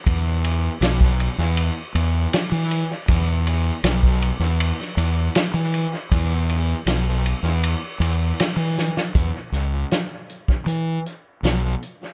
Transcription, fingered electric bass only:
0.06 0.68 E2 medium
0.81 1.27 B1 loud
1.38 1.69 E2 medium
1.95 2.26 E2 loud
2.52 2.83 E3 medium
3.08 3.70 E2 medium
3.84 4.30 B1 loud
4.39 4.71 E2 medium
4.97 5.28 E2 loud
5.54 5.85 E3 medium
6.11 6.73 E2 medium
6.86 7.33 B1 loud
7.43 7.74 E2 medium
8.00 8.31 E2 loud
8.56 8.88 E3 medium
9.15 9.30 E2 medium
9.52 9.83 C#2 medium
10.66 10.98 E3 medium
11.43 11.74 B1 medium

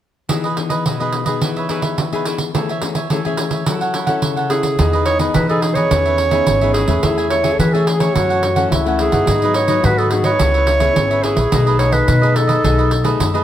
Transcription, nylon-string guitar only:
0.30 0.83 E3 medium
0.30 0.46 B3 soft
0.30 0.46 D#4 soft
0.30 0.47 G#4 medium
0.57 0.95 B3 soft
0.57 0.95 D#4 soft
0.57 0.96 G#4 medium
0.86 1.39 B2 medium
1.01 1.24 B3 medium
1.01 1.24 D#4 medium
1.01 1.24 G#4 medium
1.27 1.65 B3 medium
1.27 1.65 D#4 soft
1.27 1.66 G#4 medium
1.42 1.96 E3 medium
1.69 1.96 B3 medium
1.69 1.96 D#4 soft
1.69 1.97 G#4 medium
1.98 2.52 E3 medium
2.13 2.50 B3 medium
2.13 2.50 D#4 medium
2.13 2.51 G#4 medium
2.54 3.08 E3 medium
2.54 2.71 A3 medium
2.54 2.71 C#4 medium
2.54 2.71 G#4 medium
2.82 2.99 A3 soft
2.82 2.99 C#4 medium
2.82 2.99 G#4 medium
3.11 3.64 E3 medium
3.11 3.19 A3 soft
3.11 3.20 C#4 soft
3.11 3.20 G#4 medium
3.26 3.63 A3 medium
3.26 3.63 C#4 soft
3.26 3.63 G#4 medium
3.67 4.21 F#3 medium
3.67 4.05 C#4 soft
3.67 4.05 E4 soft
3.67 4.05 A4 medium
4.08 4.46 C#4 medium
4.08 4.47 E4 medium
4.08 4.47 A4 medium
4.24 4.77 C#3 medium
4.51 4.77 C#4 soft
4.51 4.77 E4 medium
4.51 4.77 A4 soft
4.79 5.33 E3 soft
4.79 5.06 B3 soft
4.79 5.06 D#4 medium
4.79 5.06 G#4 medium
5.20 5.44 B3 medium
5.20 5.44 D#4 medium
5.20 5.45 G#4 medium
5.35 5.89 B2 medium
5.50 5.73 B3 medium
5.50 5.73 D#4 medium
5.50 5.74 G#4 medium
5.76 6.28 B3 medium
5.76 6.29 D#4 medium
5.76 6.29 G#4 medium
5.92 6.45 E3 soft
6.32 6.56 B3 medium
6.32 6.57 D#4 medium
6.32 6.57 G#4 medium
6.48 7.01 E3 soft
6.62 6.85 B3 medium
6.62 6.86 D#4 medium
6.62 6.86 G#4 medium
6.88 7.40 A3 medium
6.88 7.41 C#4 medium
6.88 7.41 G#4 medium
7.03 7.57 E3 soft
7.44 7.68 A3 medium
7.44 7.68 C#4 medium
7.44 7.69 G#4 medium
7.59 8.00 E3 medium
7.74 7.98 A3 medium
7.74 7.98 C#4 medium
7.74 7.98 G#4 medium
8.01 8.53 E3 medium
8.01 8.53 A3 medium
8.01 8.53 C#4 medium
8.16 8.69 F#2 medium
8.56 8.81 E3 medium
8.56 8.81 A3 medium
8.56 8.81 C#4 medium
8.72 9.25 C#3 soft
8.86 9.09 E3 medium
8.86 9.10 A3 medium
8.86 9.10 C#4 medium
9.12 9.41 F#3 medium
9.12 9.42 B3 medium
9.12 9.42 D#4 medium
9.27 9.81 G#2 medium
9.43 9.66 F#3 medium
9.43 9.66 B3 medium
9.43 9.66 D#4 medium
9.68 10.07 F#3 medium
9.68 10.07 B3 medium
9.68 10.07 D#4 medium
9.84 10.37 D#3 medium
10.12 10.35 F#3 soft
10.12 10.36 B3 medium
10.12 10.36 D#4 medium
10.40 10.93 C#3 medium
10.40 10.78 B3 medium
10.40 10.78 E4 soft
10.40 10.78 G#4 soft
10.81 11.19 B3 medium
10.81 11.19 E4 medium
10.81 11.19 G#4 medium
10.96 11.49 G#2 soft
11.23 11.50 B3 soft
11.23 11.50 E4 medium
11.23 11.50 G#4 medium
11.52 12.05 B2 medium
11.52 11.75 A3 medium
11.52 11.76 D#4 medium
11.52 11.76 G#4 medium
11.79 12.06 A3 medium
11.79 12.06 D#4 soft
11.79 12.06 G#4 medium
12.08 12.61 F#2 medium
12.22 12.60 A3 medium
12.22 12.60 D#4 medium
12.22 12.60 G#4 medium
12.64 13.17 B2 soft
12.64 12.90 A3 medium
12.64 12.90 D#4 medium
12.64 12.91 G#4 medium
13.04 13.29 A3 medium
13.04 13.29 D#4 medium
13.04 13.29 G#4 medium
13.20 13.44 F#2 soft
13.34 13.44 A3 medium
13.34 13.44 D#4 medium
13.34 13.44 G#4 medium

